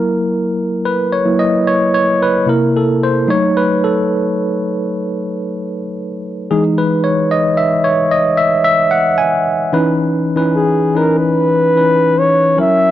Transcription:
0.00 0.80 F#3 soft
0.00 0.80 A#3 soft
0.00 0.81 E4 medium
0.00 0.40 A#4 medium
0.85 1.10 B4 medium
1.12 1.39 C#5 medium
1.25 1.61 F#3 soft
1.25 1.62 A#3 soft
1.25 1.62 E4 medium
1.39 1.66 D#5 medium
1.67 1.79 C#5 loud
1.94 2.21 C#5 medium
2.22 2.48 B4 medium
2.46 3.01 C3 medium
2.46 3.01 A#3 soft
2.46 3.02 E4 medium
2.46 2.75 A#4 medium
2.77 2.88 A4 medium
3.03 3.29 C5 medium
3.27 3.82 F#3 medium
3.27 3.82 A3 medium
3.27 3.82 D#4 medium
3.27 3.56 C#5 loud
3.57 3.68 B4 medium
3.84 5.81 A4 medium
6.51 7.06 E3 medium
6.51 7.06 G#3 soft
6.51 7.06 D#4 medium
6.51 6.63 G#4 medium
6.78 7.05 B4 medium
7.04 7.32 C#5 medium
7.31 7.59 D#5 medium
7.57 7.83 E5 medium
7.84 8.12 C#5 medium
8.11 8.40 D#5 medium
8.37 8.63 E5 medium
8.64 8.77 E5 loud
8.91 9.20 F#5 loud
9.18 9.69 G#5 medium
9.73 10.30 E3 medium
9.73 10.30 C#4 medium
9.73 10.30 D#4 medium
9.73 10.31 B4 medium
10.36 10.90 E3 medium
10.36 10.91 C#4 medium
10.36 10.91 D#4 medium
10.36 10.91 B4 medium
10.56 10.99 G#4 medium
10.95 11.70 E3 medium
10.95 11.70 C#4 medium
10.95 11.71 D#4 medium
10.95 11.18 A#4 medium
10.95 11.71 B4 medium
11.19 12.20 B4 loud
11.76 12.57 E3 medium
11.76 12.57 C#4 medium
11.76 12.58 D#4 medium
11.76 12.58 B4 medium
12.19 12.58 C#5 loud
12.57 12.91 F#3 medium
12.57 12.91 C#4 medium
12.57 12.91 E4 medium
12.57 12.91 A#4 medium
12.57 12.91 E5 loud

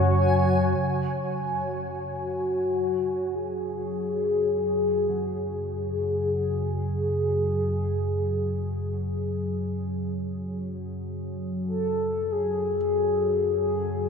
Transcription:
0.00 0.76 F#2 medium
0.00 0.77 C#3 medium
0.00 0.77 F#3 medium
0.00 14.09 F#4 medium
0.00 14.09 C#5 medium
0.00 0.82 G#5 medium
0.78 14.09 F#2 medium
0.78 14.09 C#3 medium
0.78 14.09 F#3 medium
2.07 3.36 F#4 loud
3.35 5.89 G#4 loud
5.09 12.75 F#3 soft
5.90 9.69 G#4 loud
11.67 12.33 A4 loud
12.31 13.57 G#4 loud
13.58 14.09 G#4 loud

